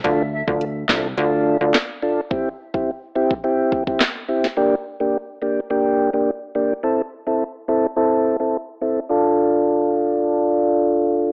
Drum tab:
HH |x---x---x---x---|----------------|----------------|----------------|
CP |------x-----x---|------------x---|----------------|----------------|
SD |------o-----o---|------------o--o|----------------|----------------|
BD |o--o--o---------|o--o---o--oo----|----------------|----------------|

HH |----------------|
CP |----------------|
SD |----------------|
BD |----------------|